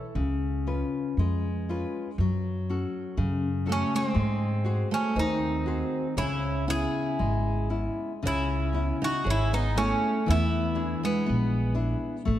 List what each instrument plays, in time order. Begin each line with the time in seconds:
Already playing: nylon-string guitar E3
0.15 upright bass C#2, nylon-string guitar C#3
0.67 nylon-string guitar C#4 F4 B4
1.17 upright bass F2, nylon-string guitar G#3
1.69 nylon-string guitar C#4 F4 B4
2.18 upright bass F#2, nylon-string guitar F#3
2.70 nylon-string guitar C#4 F#4 A4
3.17 upright bass F#2, nylon-string guitar C#3
3.66 twelve-string acoustic guitar A3, nylon-string guitar C#4 F#4 A4
3.72 bouzouki C#4
3.95 twelve-string acoustic guitar G#3, bouzouki C4
4.14 upright bass G#2, nylon-string guitar G#3
4.64 nylon-string guitar F#4 G#4 C5
4.91 twelve-string acoustic guitar A3, bouzouki C#4
5.16 upright bass D#2, nylon-string guitar D#3, twelve-string acoustic guitar C4, bouzouki D#4
5.66 nylon-string guitar F#4 G#4 C5
6.17 upright bass C#2, nylon-string guitar C#3, twelve-string acoustic guitar C#4, bouzouki E4
6.67 nylon-string guitar B3 C#4 E4, twelve-string acoustic guitar E4, bouzouki G#4
7.19 upright bass G#1, nylon-string guitar G#3
7.70 nylon-string guitar B3 C#4 E4
8.23 upright bass C#2, nylon-string guitar C#3, twelve-string acoustic guitar C#4
8.27 bouzouki E4
8.73 nylon-string guitar B3 C#4 E4
9.02 twelve-string acoustic guitar D#4, bouzouki F#4
9.24 upright bass G#1, twelve-string acoustic guitar C#4, nylon-string guitar G#4
9.30 bouzouki E4
9.53 twelve-string acoustic guitar B3, bouzouki D#4
9.75 twelve-string acoustic guitar A3, nylon-string guitar B3 C#4 E4, bouzouki C#4
10.26 upright bass E2, nylon-string guitar E3, twelve-string acoustic guitar B3
10.30 bouzouki E4
10.75 nylon-string guitar D4 E4 G#4
11.03 twelve-string acoustic guitar G#3, bouzouki B3
11.26 upright bass A#1, nylon-string guitar B3
11.75 nylon-string guitar D4 E4 G#4
12.25 upright bass A1, nylon-string guitar A3